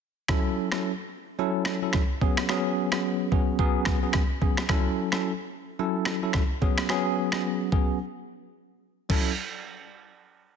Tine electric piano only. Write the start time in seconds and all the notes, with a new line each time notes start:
0.29 F#3 C#4 E4 A4
0.72 F#3 C#4 E4 A4
1.39 F#3 C#4 E4 A4
1.82 F#3 C#4 E4 A4
2.21 F#3 B3 C#4 G#4
2.49 F#3 B3 C#4 G#4
2.93 F#3 B3 C#4 G#4
3.32 F#3 B3 C#4 G#4
3.59 F#3 B3 C#4 G#4
4.03 F#3 B3 C#4 G#4
4.42 F#3 B3 C#4 G#4
4.69 F#3 C#4 E4 A4
5.12 F#3 C#4 E4 A4
5.79 F#3 C#4 E4 A4
6.22 F#3 C#4 E4 A4
6.62 F#3 B3 C#4 G#4
6.89 F#3 B3 C#4 G#4
7.33 F#3 B3 C#4 G#4
7.72 F#3 B3 C#4 G#4
9.09 F#3 C#4 E4 A4